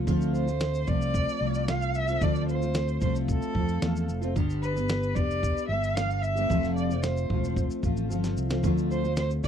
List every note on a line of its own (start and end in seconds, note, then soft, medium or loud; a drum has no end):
0.07 0.83 D2 loud
0.07 0.47 D3 loud
0.07 0.47 F3 loud
0.07 0.48 A3 loud
0.07 0.47 C4 loud
0.07 0.45 F4 loud
0.07 kick medium
0.07 shaker medium
0.21 shaker medium
0.35 0.89 C5 medium
0.35 shaker soft
0.46 0.87 A3 soft
0.46 0.87 C4 soft
0.46 0.87 F4 medium
0.46 shaker medium
0.60 snare loud
0.60 shaker medium
0.74 shaker medium
0.87 1.25 C2 medium
0.87 1.39 F3 medium
0.87 1.40 A3 medium
0.87 1.42 C4 medium
0.87 1.42 F4 medium
0.87 1.71 D5 loud
0.87 kick medium
0.87 shaker medium
1.02 shaker medium
1.14 kick medium
1.14 shaker medium
1.28 shaker medium
1.40 2.17 C2 medium
1.40 1.66 F3 medium
1.40 1.67 A3 medium
1.40 1.68 C4 medium
1.40 1.69 F4 medium
1.54 shaker medium
1.67 2.07 F3 medium
1.67 2.08 A3 medium
1.67 2.08 C4 medium
1.67 2.06 F4 medium
1.67 1.97 F5 loud
1.67 snare loud
1.67 shaker medium
1.82 shaker medium
1.94 2.24 E5 loud
1.94 shaker medium
2.07 2.21 A3 medium
2.07 2.21 C4 medium
2.07 2.21 F4 medium
2.07 shaker medium
2.21 2.98 D2 loud
2.21 2.61 D3 medium
2.21 2.61 F3 medium
2.21 2.62 A3 medium
2.21 2.62 C4 medium
2.21 2.60 F4 loud
2.21 2.48 D5 loud
2.21 kick loud
2.21 shaker medium
2.35 shaker medium
2.49 2.99 C5 loud
2.49 shaker medium
2.61 3.01 A3 soft
2.61 3.02 C4 medium
2.61 3.01 F4 medium
2.61 shaker medium
2.74 snare loud
2.74 shaker medium
2.88 shaker soft
3.00 3.39 C2 medium
3.00 3.53 F3 medium
3.00 3.55 A3 medium
3.00 3.55 C4 medium
3.00 3.56 F4 medium
3.00 3.14 C5 medium
3.00 kick medium
3.00 shaker medium
3.15 shaker medium
3.28 4.05 A4 medium
3.28 kick medium
3.28 shaker medium
3.42 shaker medium
3.54 3.80 F2 medium
3.54 3.80 F3 medium
3.54 3.81 A3 medium
3.54 3.82 C4 medium
3.54 3.83 F4 medium
3.54 kick medium
3.68 shaker medium
3.81 4.07 E2 medium
3.81 4.22 F3 medium
3.81 4.22 A3 medium
3.81 4.22 C4 medium
3.81 4.20 F4 medium
3.81 snare loud
3.81 shaker medium
3.96 shaker medium
4.09 4.36 F1 loud
4.09 shaker medium
4.21 4.36 A3 medium
4.21 4.36 C4 medium
4.21 4.35 F4 medium
4.21 shaker medium
4.35 5.16 G1 loud
4.35 4.76 G2 loud
4.35 4.76 D3 medium
4.35 4.76 G3 loud
4.35 4.75 B3 loud
4.35 4.74 D4 loud
4.35 4.74 G4 loud
4.35 kick loud
4.35 shaker medium
4.50 shaker medium
4.62 5.17 B4 medium
4.62 shaker medium
4.75 5.13 G3 soft
4.75 5.14 B3 soft
4.75 5.15 D4 medium
4.75 5.15 G4 medium
4.75 shaker medium
4.89 snare loud
4.89 shaker medium
5.03 shaker soft
5.14 5.53 F1 medium
5.14 5.67 G3 medium
5.14 5.68 B3 medium
5.14 5.70 D4 medium
5.14 5.70 G4 medium
5.14 5.68 D5 loud
5.14 kick medium
5.14 shaker soft
5.30 shaker medium
5.43 kick medium
5.43 shaker medium
5.57 shaker medium
5.68 6.45 G1 medium
5.68 5.94 G3 soft
5.68 5.95 B3 medium
5.68 5.96 D4 medium
5.68 5.97 G4 medium
5.68 5.97 E5 loud
5.83 shaker medium
5.95 6.36 G3 medium
5.95 6.36 B3 medium
5.95 6.36 D4 medium
5.95 6.34 G4 medium
5.95 6.23 F5 loud
5.95 snare loud
5.95 shaker medium
6.10 shaker medium
6.22 6.75 E5 loud
6.22 shaker soft
6.35 6.50 G3 medium
6.35 6.50 B3 medium
6.35 6.50 D4 medium
6.35 6.49 G4 medium
6.35 shaker medium
6.49 7.26 F1 loud
6.49 6.90 F2 medium
6.49 6.90 C3 loud
6.49 6.90 F3 medium
6.49 6.90 A3 medium
6.49 6.89 C4 medium
6.49 6.88 F4 medium
6.49 kick loud
6.49 shaker medium
6.63 snare soft
6.63 shaker soft
6.76 7.04 D5 medium
6.76 shaker soft
6.89 7.28 F3 soft
6.89 7.29 A3 soft
6.89 7.30 C4 medium
6.89 7.30 F4 medium
6.89 shaker medium
7.02 7.56 C5 medium
7.02 snare loud
7.02 shaker medium
7.17 shaker soft
7.29 7.67 E1 loud
7.29 7.81 F3 medium
7.29 7.83 A3 medium
7.29 7.84 C4 medium
7.29 7.84 F4 medium
7.29 kick medium
7.44 shaker medium
7.56 kick medium
7.56 shaker medium
7.70 shaker medium
7.82 8.08 A1 medium
7.82 8.07 F3 medium
7.82 8.08 A3 medium
7.82 8.09 C4 medium
7.82 8.10 F4 medium
7.82 kick medium
7.82 shaker soft
7.97 shaker medium
8.08 8.35 G1 medium
8.08 8.49 F3 medium
8.08 8.50 A3 medium
8.08 8.49 C4 medium
8.08 8.48 F4 medium
8.08 shaker medium
8.24 snare medium
8.24 shaker medium
8.37 8.62 C2 medium
8.37 shaker medium
8.49 8.62 F3 medium
8.49 8.62 A3 medium
8.49 8.63 C4 medium
8.49 8.63 F4 medium
8.49 snare medium
8.49 shaker medium
8.62 9.40 D2 loud
8.62 9.03 D3 loud
8.62 9.04 F3 loud
8.62 9.04 A3 loud
8.62 9.03 C4 loud
8.62 9.01 F4 loud
8.62 kick loud
8.62 shaker medium
8.78 shaker medium
8.91 9.16 C5 medium
8.91 shaker soft
9.03 9.42 A3 soft
9.03 9.44 C4 medium
9.03 9.43 F4 medium
9.03 shaker soft
9.16 9.30 C5 loud
9.16 snare loud
9.16 shaker medium
9.30 shaker soft
9.42 9.48 C2 medium
9.42 9.48 F3 medium
9.42 9.48 A3 medium
9.42 9.48 D5 loud
9.42 kick medium
9.42 shaker medium